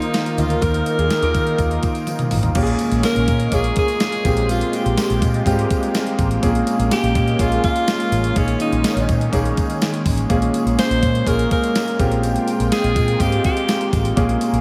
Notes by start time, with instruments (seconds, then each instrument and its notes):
Already playing: grand piano D#3 A#3 D#4 F4 A#4 C5, analog synth pad D#3 D#4 F4 A#4, alto saxophone D#4
0.02 closed hi-hat, tambourine
0.14 snare, closed hi-hat, tambourine
0.26 closed hi-hat, tambourine
0.38 picked electric bass D2, grand piano D#3, alto saxophone F4, closed hi-hat, tambourine
0.50 closed hi-hat, tambourine
0.62 picked electric bass D#2, grand piano A#3 D#4 F4 A#4, alto saxophone A#4, kick, closed hi-hat, tambourine
0.74 closed hi-hat
0.86 closed hi-hat, tambourine
0.98 picked electric bass D#2, grand piano A#3 D#4 F4 G#4, closed hi-hat
1.10 snare, closed hi-hat, tambourine
1.22 picked electric bass D#2, grand piano A#3 D#4 F4 A#4, closed hi-hat
1.35 picked electric bass D#3, kick, closed hi-hat, tambourine
1.47 closed hi-hat
1.59 picked electric bass D#2, kick, closed hi-hat, tambourine
1.71 closed hi-hat
1.83 kick, closed hi-hat, tambourine
1.95 closed hi-hat, tambourine
2.07 closed hi-hat, high tom, tambourine
2.19 closed hi-hat, mid tom, tambourine
2.31 picked electric bass A1, mid tom, open hi-hat, tambourine
2.43 closed hi-hat, floor tom, tambourine
2.55 picked electric bass A#1, grand piano A#2 A#3 C#4 F4 G4, analog synth pad G#3 A#3 C#4, kick, closed hi-hat, crash, tambourine
2.62 grand piano G#4
2.67 closed hi-hat
2.79 closed hi-hat, tambourine
2.92 picked electric bass A#1, closed hi-hat, tambourine
3.03 alto saxophone A#4, snare, closed hi-hat, tambourine
3.16 picked electric bass A#1, closed hi-hat
3.28 picked electric bass A#2, kick, closed hi-hat, tambourine
3.40 closed hi-hat
3.52 picked electric bass A#1, grand piano A#3 C#4 F4 G#4, alto saxophone G#4, kick, closed hi-hat, tambourine
3.64 closed hi-hat
3.76 alto saxophone G#4, kick, closed hi-hat, tambourine
3.88 closed hi-hat, tambourine
4.00 snare, closed hi-hat, tambourine
4.12 closed hi-hat, tambourine
4.25 picked electric bass A#1, grand piano A#2 G#3 C4 F4 G4, analog synth pad G#3 A#3 F4 G4, kick, closed hi-hat, tambourine
4.37 closed hi-hat
4.49 alto saxophone F4, closed hi-hat, tambourine
4.61 closed hi-hat
4.73 alto saxophone G4, closed hi-hat, tambourine
4.86 picked electric bass A#1, closed hi-hat, tambourine
4.97 snare, closed hi-hat, tambourine
5.10 picked electric bass A#1, closed hi-hat
5.22 picked electric bass A#2, kick, closed hi-hat, tambourine
5.34 closed hi-hat
5.46 picked electric bass G#2, grand piano G3 C4 F4 G4, kick, closed hi-hat, tambourine
5.51 grand piano G#3
5.59 closed hi-hat
5.71 kick, closed hi-hat, tambourine
5.83 closed hi-hat, tambourine
5.95 snare, closed hi-hat, tambourine
6.07 closed hi-hat
6.19 picked electric bass A1, kick, closed hi-hat, tambourine
6.31 closed hi-hat
6.42 picked electric bass A#1, grand piano A#2 A#3 C#4 F4 G#4, analog synth pad G#3 C#4, kick, closed hi-hat, tambourine
6.55 closed hi-hat
6.67 closed hi-hat, tambourine
6.79 picked electric bass A#1, closed hi-hat, tambourine
6.91 alto saxophone G4, snare, closed hi-hat, tambourine
7.03 picked electric bass A#1, closed hi-hat
7.15 picked electric bass A#2, kick, closed hi-hat, tambourine
7.28 closed hi-hat
7.39 picked electric bass A#1, grand piano A#3 C#4 F4 G#4, alto saxophone F4, kick, closed hi-hat, tambourine
7.52 closed hi-hat
7.64 alto saxophone F4, kick, closed hi-hat, tambourine
7.76 closed hi-hat, tambourine
7.88 snare, closed hi-hat, tambourine
8.00 closed hi-hat, tambourine
8.12 picked electric bass A1, closed hi-hat, tambourine
8.24 closed hi-hat
8.36 picked electric bass A#1, grand piano A#2 A#3 C#4 D#4 G#4, analog synth pad D#3 G#3, alto saxophone C#4, kick, closed hi-hat, tambourine
8.48 closed hi-hat
8.60 alto saxophone D#4, closed hi-hat, tambourine
8.72 picked electric bass A#1, closed hi-hat
8.84 snare, closed hi-hat, tambourine
8.96 picked electric bass A#1, closed hi-hat
9.09 picked electric bass A#2, kick, closed hi-hat, tambourine
9.21 closed hi-hat
9.32 picked electric bass A#1, grand piano A#3 C#4 D#4 G#4, kick, closed hi-hat, tambourine
9.45 closed hi-hat
9.57 kick, closed hi-hat, tambourine
9.70 closed hi-hat, tambourine
9.81 snare, closed hi-hat, tambourine
9.94 closed hi-hat
10.06 picked electric bass A1, kick, open hi-hat, tambourine
10.18 closed hi-hat, tambourine
10.29 picked electric bass A#1, grand piano A#2 A#3 C4 F4 G#4, analog synth pad A#3, kick, closed hi-hat, tambourine
10.36 grand piano C#4
10.42 closed hi-hat
10.54 closed hi-hat, tambourine
10.66 picked electric bass A#1, closed hi-hat, tambourine
10.79 alto saxophone C5, snare, closed hi-hat, tambourine
10.90 picked electric bass A#1, closed hi-hat
11.03 picked electric bass A#2, kick, closed hi-hat, tambourine
11.15 closed hi-hat
11.26 picked electric bass A#1, grand piano A#3 C#4 F4 G#4, alto saxophone A#4, kick, closed hi-hat, tambourine
11.39 closed hi-hat
11.51 alto saxophone A#4, kick, closed hi-hat, tambourine
11.63 closed hi-hat, tambourine
11.75 snare, closed hi-hat, tambourine
11.88 closed hi-hat, tambourine
11.99 picked electric bass A#1, grand piano A#2 G#3 C4 F4 G4, analog synth pad G#3 F4 G5, kick, closed hi-hat, tambourine
12.12 closed hi-hat
12.23 closed hi-hat, tambourine
12.36 closed hi-hat
12.48 closed hi-hat, tambourine
12.60 picked electric bass A#1, closed hi-hat, tambourine
12.72 alto saxophone G#4, snare, closed hi-hat, tambourine
12.84 picked electric bass A#1, closed hi-hat
12.96 picked electric bass A#2, kick, closed hi-hat, tambourine
13.08 closed hi-hat
13.20 picked electric bass G#2, grand piano G#3 C4 F4 G4, alto saxophone G4, kick, closed hi-hat, tambourine
13.32 closed hi-hat
13.44 alto saxophone G4, kick, closed hi-hat, tambourine
13.57 closed hi-hat
13.69 snare, closed hi-hat, tambourine
13.81 closed hi-hat
13.93 picked electric bass A1, kick, closed hi-hat, tambourine
14.05 closed hi-hat, tambourine
14.16 picked electric bass A#1, grand piano A#2 A#3 C#4 F4 G#4, analog synth pad G#3 C#4, kick, closed hi-hat, tambourine
14.29 closed hi-hat
14.41 closed hi-hat, tambourine
14.53 picked electric bass A#1, closed hi-hat, tambourine